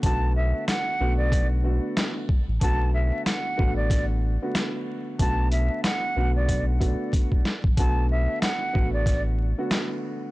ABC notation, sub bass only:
X:1
M:4/4
L:1/16
Q:"Swing 16ths" 1/4=93
K:Bm
V:1 name="Sub bass" clef=bass
B,,,4 z2 B,,,4- B,,, z4 A,,, | B,,,4 z2 A,,,4- A,,, z4 z | B,,,4 z2 B,,,4- B,,, z4 A,,, | B,,,4 z2 A,,,4- A,,, z4 z |]